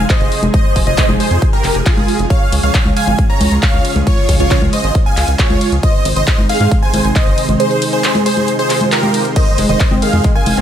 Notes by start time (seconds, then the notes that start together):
Already playing: C3 F3 G#3 D#4 G#4
0.10 C5 D#5, kick, clap, closed hi-hat
0.21 F1, closed hi-hat
0.32 open hi-hat
0.43 F1, closed hi-hat, high conga
0.54 C5 D#5, kick, closed hi-hat
0.76 F1, kick, open hi-hat
0.87 F1 C5 D#5, closed hi-hat
0.98 kick, clap, closed hi-hat
1.09 F1, high conga
1.20 G#4 C5, open hi-hat
1.31 F2, closed hi-hat
1.42 kick, closed hi-hat
1.53 G4 A#4, closed hi-hat
1.64 F1, clap, open hi-hat
1.75 F1, closed hi-hat
1.86 F4 G#4, kick, clap, closed hi-hat
1.97 F1, closed hi-hat, high conga
2.08 open hi-hat
2.19 F1, closed hi-hat
2.30 C#3 G#3 F4 C#5 F5, kick, closed hi-hat
2.52 C#2, open hi-hat, ride
2.63 C#2 C#5 F5, closed hi-hat
2.74 kick, clap, closed hi-hat
2.86 C#2, high conga
2.97 F5 G#5, open hi-hat, ride
3.08 G#1, closed hi-hat, high conga
3.19 kick, closed hi-hat
3.30 C#5 A#5
3.41 C#2, open hi-hat, ride, high conga
3.52 C#2, closed hi-hat
3.63 C#5 F5, kick, clap, closed hi-hat
3.74 C#2, closed hi-hat
3.85 open hi-hat, ride
3.96 C#2, closed hi-hat, high conga
4.07 F4 C#5, kick, closed hi-hat
4.29 C#2, kick, open hi-hat, ride
4.40 C#2 F4 C#5, closed hi-hat
4.51 kick, clap, closed hi-hat
4.62 C#2, high conga
4.73 C5 D#5, open hi-hat, ride
4.84 G#1, closed hi-hat
4.95 kick, closed hi-hat
5.06 F5 G#5
5.17 C#2, clap, open hi-hat, ride
5.28 C#2, closed hi-hat
5.39 F4 C#5, kick, clap, closed hi-hat
5.50 C#2, closed hi-hat, high conga
5.61 open hi-hat, ride
5.72 C#2, closed hi-hat
5.83 C3 D#3 D#4 C5 D#5, kick, closed hi-hat
6.05 G#1, open hi-hat, ride
6.16 G#1 C5 D#5, closed hi-hat
6.27 kick, clap, closed hi-hat
6.38 G#1, high conga
6.49 G#4 F5, open hi-hat, ride
6.60 G#2, closed hi-hat, high conga
6.71 kick, closed hi-hat
6.82 C5 G#5
6.94 G#1, open hi-hat, ride, high conga
7.05 G#1, closed hi-hat
7.16 C5 D#5, kick, clap, closed hi-hat
7.27 G#1, closed hi-hat
7.38 open hi-hat, ride
7.49 G#1, closed hi-hat, high conga
7.60 G#4 C5, closed hi-hat
7.71 closed hi-hat
7.82 open hi-hat, ride
7.93 G#4 C5, closed hi-hat
8.04 clap, closed hi-hat
8.15 closed hi-hat, high conga
8.26 G#4 C5, open hi-hat, ride
8.37 closed hi-hat, high conga
8.48 closed hi-hat, swell
8.59 G#4 C5, closed hi-hat
8.70 clap, open hi-hat, ride
8.81 closed hi-hat, high conga
8.92 G4 A#4, clap, closed hi-hat
9.03 closed hi-hat, high conga
9.14 open hi-hat, ride
9.25 closed hi-hat
9.36 C3 D#3 F3 C5 D#5, kick, closed hi-hat, crash
9.58 F1 G#3, open hi-hat, ride
9.69 F1 D#3 C5 D#5, closed hi-hat
9.80 kick, clap, closed hi-hat
9.91 F1 C4, high conga
10.02 D#3 G#4 F5, open hi-hat, ride
10.13 F2, closed hi-hat, high conga
10.24 G#3, kick, closed hi-hat
10.35 D#3 F5 G#5
10.46 F1, open hi-hat, ride, high conga
10.57 F1 C4, closed hi-hat